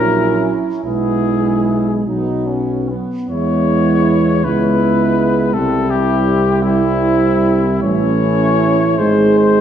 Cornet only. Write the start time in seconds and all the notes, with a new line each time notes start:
Already playing: A#4
0.83 G#4
3.29 C#5
4.44 B4
5.54 A4
5.90 G4
6.62 E4
7.82 C#5
8.98 C5
9.39 C5